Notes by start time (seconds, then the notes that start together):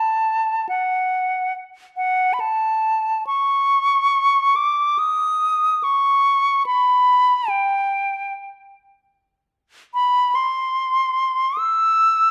Already playing: A5
0.69 F#5
1.97 F#5
2.33 B5
2.40 A5
3.27 C#6
4.56 D6
4.99 D#6
5.84 C#6
6.66 B5
7.49 G5
9.94 B5
10.35 C6
11.58 E6